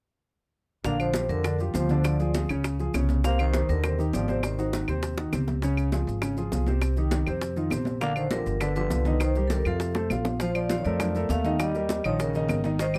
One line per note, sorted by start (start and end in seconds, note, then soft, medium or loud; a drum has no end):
0.85 1.26 A#1 medium
0.85 1.10 D3 medium
0.85 0.99 A#3 medium
0.85 1.10 D4 medium
0.85 1.10 D5 medium
0.85 1.01 F5 loud
0.85 high bongo medium
0.85 high conga soft
0.85 maracas medium
0.99 1.28 F3 medium
0.99 1.28 C5 medium
0.99 high bongo soft
0.99 high conga soft
0.99 claves medium
0.99 maracas soft
1.14 1.39 F3 medium
1.14 1.40 F4 medium
1.14 1.40 G4 medium
1.14 high bongo medium
1.14 high conga loud
1.14 maracas medium
1.29 1.71 F2 loud
1.29 1.57 D3 medium
1.29 1.57 A#4 medium
1.29 high conga soft
1.29 maracas soft
1.44 1.57 D3 medium
1.44 1.57 D4 medium
1.44 1.57 D5 medium
1.44 high bongo medium
1.44 high conga soft
1.44 claves medium
1.44 maracas medium
1.58 1.72 F3 medium
1.58 1.72 F4 medium
1.58 1.73 G4 medium
1.58 high bongo soft
1.58 high conga soft
1.58 maracas soft
1.74 2.44 D2 medium
1.74 2.02 F3 medium
1.74 1.87 F3 medium
1.74 1.87 F4 medium
1.74 1.87 G4 medium
1.74 2.05 C5 medium
1.74 high bongo soft
1.74 low bongo medium
1.74 high conga medium
1.74 maracas medium
1.89 2.14 D3 medium
1.89 2.14 D4 medium
1.89 2.15 D5 medium
1.89 high bongo soft
1.89 high conga medium
1.89 maracas soft
2.04 2.32 F3 medium
2.04 2.32 D5 medium
2.04 high bongo medium
2.04 claves medium
2.04 maracas medium
2.20 2.32 F3 medium
2.20 2.32 F4 medium
2.20 2.32 G#4 medium
2.20 high bongo soft
2.20 high conga soft
2.20 maracas soft
2.34 2.47 F3 medium
2.34 2.47 F4 medium
2.34 2.47 G#4 medium
2.34 high bongo medium
2.34 high conga medium
2.34 maracas medium
2.49 2.91 C#2 medium
2.49 2.74 C#3 medium
2.49 2.74 C#4 medium
2.49 2.74 C#5 medium
2.49 claves medium
2.49 maracas soft
2.64 high bongo medium
2.64 high conga soft
2.64 maracas medium
2.79 2.92 F3 medium
2.79 2.92 F4 medium
2.79 2.92 G#4 medium
2.79 high bongo soft
2.79 high conga soft
2.79 maracas soft
2.94 3.63 C2 medium
2.94 3.19 C#3 medium
2.94 3.19 C#4 medium
2.94 3.19 C#5 medium
2.94 high bongo soft
2.94 low bongo medium
2.94 high conga medium
2.94 claves medium
2.94 maracas medium
3.09 high bongo soft
3.09 high conga medium
3.09 maracas soft
3.24 3.49 C3 medium
3.24 3.38 A#3 medium
3.24 3.49 C4 medium
3.24 3.49 C5 medium
3.24 3.40 F5 loud
3.24 high bongo medium
3.24 high conga soft
3.24 maracas medium
3.38 3.67 D#3 medium
3.38 3.67 C5 medium
3.38 high bongo soft
3.38 high conga soft
3.38 claves medium
3.38 maracas soft
3.54 3.79 D#3 medium
3.54 3.79 D#4 medium
3.54 3.79 G4 medium
3.54 high bongo medium
3.54 high conga loud
3.54 maracas medium
3.69 4.10 D#2 loud
3.69 3.97 D3 medium
3.69 3.97 A#4 medium
3.69 high conga soft
3.69 maracas soft
3.84 3.96 C3 medium
3.84 3.96 C4 medium
3.84 3.96 C5 medium
3.84 high bongo medium
3.84 high conga soft
3.84 claves medium
3.84 maracas medium
3.99 4.11 D#3 medium
3.99 4.11 D#4 medium
3.99 4.11 G4 medium
3.99 high bongo soft
3.99 high conga soft
3.99 maracas soft
4.13 4.83 G#1 medium
4.13 4.25 D#3 medium
4.13 4.41 F3 medium
4.13 4.26 D#4 medium
4.13 4.26 G4 medium
4.13 4.44 D5 medium
4.13 high bongo soft
4.13 low bongo medium
4.13 high conga medium
4.13 maracas medium
4.28 4.53 C3 medium
4.28 4.53 C4 medium
4.28 4.53 C5 medium
4.28 high bongo soft
4.28 high conga medium
4.28 maracas soft
4.43 4.71 D#3 medium
4.43 4.71 C5 medium
4.43 high bongo medium
4.43 high conga soft
4.43 claves medium
4.43 maracas medium
4.58 4.71 D#3 medium
4.58 4.71 D#4 medium
4.58 4.71 F#4 medium
4.58 high bongo soft
4.58 high conga soft
4.58 maracas soft
4.73 4.85 D#3 medium
4.73 4.85 D#4 medium
4.73 4.85 F#4 medium
4.73 high bongo medium
4.73 high conga medium
4.73 maracas medium
4.88 5.30 D#2 loud
4.88 5.12 C3 medium
4.88 5.13 C4 medium
4.88 5.13 C5 medium
4.88 claves medium
4.88 maracas soft
5.03 high bongo medium
5.03 high conga soft
5.03 maracas medium
5.18 5.30 D#3 medium
5.18 5.30 D#4 medium
5.18 5.30 F#4 medium
5.18 high bongo medium
5.18 high conga soft
5.18 maracas soft
5.33 6.02 C#2 medium
5.33 5.57 C3 medium
5.33 5.57 C4 medium
5.33 5.58 C5 medium
5.33 low bongo medium
5.33 high conga medium
5.33 claves medium
5.33 maracas medium
5.48 low bongo medium
5.48 high conga medium
5.48 maracas soft
5.62 5.87 C#3 medium
5.62 5.88 C#4 medium
5.62 5.88 C#5 medium
5.62 high bongo medium
5.62 high conga soft
5.62 maracas medium
5.77 high bongo soft
5.77 high conga soft
5.77 claves medium
5.77 maracas soft
5.92 6.17 F3 medium
5.92 6.17 F4 medium
5.92 6.17 G#4 medium
5.92 high bongo medium
5.92 high conga medium
5.92 maracas medium
6.07 6.49 G#1 medium
6.07 high conga soft
6.07 maracas soft
6.22 6.35 C#3 medium
6.22 6.35 C#4 medium
6.22 6.35 C#5 medium
6.22 high bongo medium
6.22 high conga soft
6.22 claves medium
6.22 maracas medium
6.37 6.50 F3 medium
6.37 6.50 F4 medium
6.37 6.50 G#4 medium
6.37 high bongo soft
6.37 high conga soft
6.37 maracas soft
6.52 7.21 C2 medium
6.52 6.65 F3 medium
6.52 6.65 F4 medium
6.52 6.65 G#4 medium
6.52 high bongo soft
6.52 low bongo medium
6.52 high conga medium
6.52 maracas medium
6.67 6.92 C3 medium
6.67 6.92 C4 medium
6.67 6.92 C5 medium
6.67 high bongo soft
6.67 high conga medium
6.67 maracas soft
6.81 high bongo medium
6.81 high conga soft
6.81 claves medium
6.81 maracas medium
6.96 7.10 D#3 medium
6.96 7.10 D#4 medium
6.96 7.10 G4 medium
6.96 high bongo soft
6.96 high conga soft
6.96 maracas soft
7.11 7.24 D#3 medium
7.11 7.25 D#4 medium
7.11 7.25 G4 medium
7.11 high bongo medium
7.11 high conga loud
7.11 maracas medium
7.27 7.69 F2 medium
7.27 7.51 C3 medium
7.27 7.51 C4 medium
7.27 7.52 C5 medium
7.27 claves medium
7.27 maracas soft
7.41 high bongo medium
7.41 high conga soft
7.41 maracas medium
7.56 7.69 D#3 medium
7.56 7.69 D#4 medium
7.56 7.69 F4 medium
7.56 high bongo soft
7.56 high conga soft
7.56 maracas soft
7.70 8.41 A#1 medium
7.70 7.96 C3 medium
7.70 7.96 C4 medium
7.70 7.96 C5 medium
7.70 high bongo soft
7.70 low bongo medium
7.70 high conga medium
7.70 claves medium
7.70 maracas medium
7.85 high bongo soft
7.85 high conga medium
7.85 maracas soft
8.01 8.26 D3 medium
8.01 8.15 A#3 medium
8.01 8.26 D4 medium
8.01 8.26 D5 medium
8.01 8.15 F5 loud
8.01 high bongo medium
8.01 high conga soft
8.01 maracas medium
8.16 8.30 D#3 medium
8.16 8.32 C5 medium
8.16 high bongo soft
8.16 high conga soft
8.16 claves medium
8.16 maracas soft
8.31 8.59 D3 medium
8.31 8.56 F3 medium
8.31 8.56 F4 medium
8.31 8.56 G4 medium
8.31 8.62 A#4 medium
8.31 high bongo medium
8.31 high conga loud
8.31 maracas medium
8.46 8.88 G1 medium
8.46 high conga soft
8.46 maracas soft
8.60 8.75 D3 medium
8.60 8.74 D3 medium
8.60 8.74 D4 medium
8.60 8.75 B4 loud
8.60 8.74 D5 medium
8.60 high bongo medium
8.60 high conga soft
8.60 claves medium
8.60 maracas medium
8.75 9.18 D3 medium
8.75 8.89 F3 medium
8.75 8.89 F4 medium
8.75 8.89 G4 medium
8.75 9.22 B4 medium
8.75 high bongo soft
8.75 high conga soft
8.75 maracas soft
8.90 9.60 C2 medium
8.90 9.04 F3 medium
8.90 9.04 F4 medium
8.90 9.04 G4 medium
8.90 high bongo soft
8.90 low bongo medium
8.90 high conga medium
8.90 maracas medium
9.05 9.31 D#3 medium
9.05 9.31 D#4 medium
9.05 9.31 D#5 medium
9.05 high bongo soft
9.05 high conga medium
9.05 maracas soft
9.20 9.45 D#3 medium
9.20 9.46 C5 medium
9.20 high bongo medium
9.20 high conga soft
9.20 claves medium
9.20 maracas medium
9.35 9.49 G3 medium
9.35 9.49 G4 medium
9.35 9.49 A#4 medium
9.35 high bongo soft
9.35 high conga soft
9.35 maracas soft
9.47 9.50 C3 medium
9.47 9.51 A4 medium
9.47 high bongo medium
9.47 high conga loud
9.47 maracas medium
9.51 9.65 D#3 medium
9.51 9.63 G3 medium
9.51 9.63 G4 medium
9.51 9.64 A#4 medium
9.51 9.66 A#4 medium
9.65 10.07 F2 loud
9.65 10.21 C3 medium
9.65 9.91 F3 medium
9.65 9.91 F4 medium
9.65 10.22 A4 medium
9.65 9.91 F5 medium
9.65 claves medium
9.65 maracas soft
9.80 high bongo medium
9.80 high conga soft
9.80 maracas medium
9.95 10.08 A3 medium
9.95 10.08 A4 medium
9.95 10.08 C5 medium
9.95 high bongo loud
9.95 high conga soft
9.95 maracas soft
10.10 10.80 A#1 medium
10.10 10.35 F3 medium
10.10 10.36 F4 medium
10.10 10.36 F5 medium
10.10 high conga medium
10.10 claves medium
10.10 maracas medium
10.25 low bongo medium
10.25 high conga medium
10.25 maracas soft
10.40 10.54 F3 medium
10.40 10.65 F3 medium
10.40 10.65 F4 medium
10.40 10.56 C5 medium
10.40 10.66 F5 medium
10.40 high bongo medium
10.40 high conga soft
10.40 maracas medium
10.55 10.76 F3 medium
10.55 10.77 D5 medium
10.55 high bongo soft
10.55 high conga soft
10.55 claves medium
10.55 maracas soft
10.69 10.83 F3 medium
10.69 10.83 F4 medium
10.69 10.83 F5 medium
10.69 high bongo medium
10.69 high conga loud
10.69 maracas medium
10.78 10.85 D#3 medium
10.78 10.85 C#5 medium
10.85 11.27 F2 loud
10.85 11.27 F3 medium
10.85 11.10 A3 medium
10.85 11.11 A4 medium
10.85 11.11 A#4 medium
10.85 11.27 D5 medium
10.85 high conga soft
10.85 maracas soft
11.00 high bongo medium
11.00 high conga soft
11.00 low conga medium
11.00 claves medium
11.00 maracas medium
11.15 11.40 A3 medium
11.15 11.40 A4 medium
11.15 11.40 A#4 medium
11.15 high bongo soft
11.15 high conga soft
11.15 maracas soft
11.29 11.99 D#2 medium
11.29 11.58 A3 medium
11.29 11.61 F5 medium
11.29 high bongo soft
11.29 low bongo medium
11.29 high conga medium
11.29 maracas medium
11.45 11.69 D#3 medium
11.45 11.70 D#4 medium
11.45 11.70 D#5 medium
11.45 high bongo soft
11.45 high conga medium
11.45 maracas soft
11.60 12.02 G3 medium
11.60 12.02 D#5 medium
11.60 high bongo medium
11.60 claves medium
11.60 maracas medium
11.75 11.99 G3 medium
11.75 12.00 G4 medium
11.75 12.00 A#4 medium
11.75 high bongo soft
11.75 high conga soft
11.75 maracas soft
11.89 high bongo medium
11.89 high conga loud
11.89 maracas medium
12.04 12.46 A#1 loud
12.04 12.29 D#3 medium
12.04 12.19 F3 medium
12.04 12.29 D#4 medium
12.04 12.20 C#5 medium
12.04 12.30 D#5 medium
12.04 claves medium
12.04 maracas soft
12.19 12.62 C#3 medium
12.19 12.62 A#4 medium
12.19 high bongo medium
12.19 high conga soft
12.19 maracas medium
12.34 12.59 D#3 medium
12.34 12.60 D#4 medium
12.34 12.60 D#5 medium
12.34 high bongo soft
12.34 high conga soft
12.34 maracas soft
12.49 12.98 G#1 medium
12.49 high bongo soft
12.49 low bongo medium
12.49 high conga medium
12.49 claves medium
12.49 maracas medium
12.64 12.77 D#3 medium
12.64 12.77 D#4 medium
12.64 12.77 D#5 medium
12.64 high bongo soft
12.64 high conga medium
12.64 maracas soft
12.79 12.98 D#3 medium
12.79 12.87 D#3 medium
12.79 12.98 D#4 medium
12.79 12.87 C5 loud
12.79 12.98 D#5 medium
12.79 high bongo medium
12.79 high conga soft
12.79 maracas medium
12.94 12.98 G3 medium
12.94 high bongo soft
12.94 high conga soft
12.94 claves medium
12.94 maracas soft